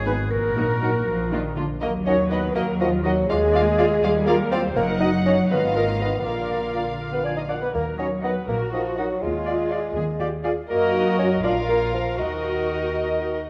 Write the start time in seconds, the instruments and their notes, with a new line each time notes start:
Already playing: double bass section G#1, cello section G#2, oboe G#4
0.05 french horn section D#3 B3, viola section B3 D#4, violin section G#4 B4, flute B4, marimba B4, clarinet B4
0.29 double bass section A#1, cello section A#2, oboe F#4, violin section A#4, clarinet A#4, marimba A#4, flute A#4
0.56 french horn section F#3 D#4, viola section A#3 D#4, violin section F#4
0.80 french horn section F#3 D#4, viola section A#3 D#4, violin section F#4
1.05 double bass section A#1, cello section F3
1.30 cello section D#3, french horn section F3 D4, viola section A#3 D4, violin section F4
1.55 cello section D3, french horn section F3 D4, viola section A#3 D4, violin section F4
1.81 double bass section D#2, cello section F#3, bassoon A#3, violin section F#4 A#4 D#5, viola section A#4
2.06 bassoon C#4, clarinet D#4, french horn section D#4 F#4, violin section F#4 A#4 D#5, viola section C#5, oboe D#5, flute F#5
2.31 bassoon B3, clarinet D#4, french horn section D#4 F#4, violin section F#4 A#4 D#5, viola section B4, oboe D#5, flute F#5
2.55 double bass section D#2, bassoon A#3, violin section F#4 A#4 D#5, viola section A#4
2.79 bassoon F3, clarinet D#4, french horn section D#4 F#4, viola section F4, violin section F#4 A#4 D#5, oboe D#5, flute F#5
3.04 bassoon F#3, clarinet D#4, french horn section D#4 F#4, violin section F#4 A#4 D#5, viola section F#4, oboe D#5, flute F#5
3.28 double bass section D#2, cello section G#3, bassoon G#3, violin section F4 D5 F5, viola section G#4
3.52 violin section F4 D5 F5, clarinet F4, oboe D5, flute F5
3.57 french horn section F4
3.77 clarinet F4, violin section F4 D5 F5, french horn section F4, oboe D5, flute F5
4.02 double bass section D#2, cello section G3, violin section F4 D5 F5
4.26 bassoon A#3, clarinet F4, french horn section F4, violin section F4 D5 F5, viola section A#4, oboe D5, flute F5
4.51 bassoon C4, clarinet F4, french horn section F4, violin section F4 D5 F5, viola section C5, oboe D5, flute F5
4.76 double bass section F#1, cello section F#3, bassoon A#3, violin section D#4 D#5 F#5, viola section A#4
5.00 bassoon D#4, clarinet D#4, french horn section D#4 F#4, viola section D#5, oboe D#5, flute F#5
5.25 bassoon C#4, clarinet D#4, french horn section D#4 F#4, viola section C#5, oboe D#5, flute F#5
5.50 double bass section G#1, cello section D#3, bassoon B3, violin section F4 D#5 F5, viola section B4
5.76 bassoon A#3, french horn section D#4 F4, clarinet F4, viola section A#4, oboe D#5, flute F5
6.00 bassoon B3, french horn section D#4 F4, clarinet F4, viola section B4, oboe D#5, flute F5
6.19 bassoon B3
6.24 double bass section A#1, cello section D3, bassoon A#3, violin section F4 D5 F5, viola section A#4
6.50 clarinet F4, french horn section F4 A#4, oboe D5, flute F5
6.74 clarinet F4, french horn section F4 A#4, oboe D5, flute F5
7.01 oboe F5
7.12 bassoon B3, viola section B4
7.24 bassoon D4, clarinet F4, french horn section F4 A#4, viola section D5, flute F5, oboe G#5
7.36 bassoon D#4, viola section D#5
7.48 bassoon D4, clarinet F4, french horn section F4 A#4, viola section D5, flute F5, oboe F#5
7.61 bassoon B3, viola section B4
7.73 double bass section D#2, cello section F#3, bassoon A#3, viola section A#4
7.98 bassoon C#4, clarinet D#4, french horn section F#4 A#4, viola section C#5, oboe D#5, flute F#5
8.22 bassoon B3, clarinet D#4, violin section D#4 D#5 F#5, french horn section F#4 A#4, viola section B4, oboe D#5, flute F#5
8.48 double bass section A#1, bassoon A#3, cello section F#4, viola section A#4
8.72 bassoon F3, clarinet D#4, viola section F4, french horn section F#4 A#4, oboe D#5, flute F#5
8.97 bassoon F#3, violin section D#4 D#5 F#5, clarinet D#4, french horn section F#4 A#4, viola section F#4, oboe D#5, flute F#5
9.22 double bass section D#2, bassoon G#3, cello section F4, viola section G#4
9.46 french horn section F4 D5, clarinet F4, oboe D5, flute F5
9.70 clarinet F4, violin section F4 D5 F5, french horn section F4 D5, oboe D5, flute F5
9.95 double bass section D#2, cello section G#4
10.19 french horn section F4 D5, clarinet F4, cello section G4, oboe D5, flute F5
10.43 french horn section F4 D5, clarinet F4, violin section F4 D5 F5, cello section G#4, oboe D5, flute F5
10.68 double bass section F#2, bassoon A#3, violin section F#4 A#4 D#5, cello section F#4, clarinet F#4, oboe A#4, viola section A#4, flute D#5
10.93 french horn section D#4 A#4
11.18 bassoon C#4, french horn section D#4 A#4, viola section C#5
11.43 double bass section A#1, bassoon D4, cello section F4, clarinet F4, violin section F4 A#4 F5, oboe A#4, viola section D5, flute F5
11.68 bassoon A#3, french horn section F4 A#4, viola section A#4
11.94 bassoon F3, viola section F4, french horn section F4 A#4
12.18 double bass section D#2, bassoon D#3, viola section D#4, violin section F#4 A#4 D#5, cello section F#4, clarinet F#4, oboe A#4, flute D#5
12.44 french horn section F#4 A#4
12.69 french horn section F#4 A#4
13.21 french horn section F#4 A#4
13.46 french horn section F#4 A#4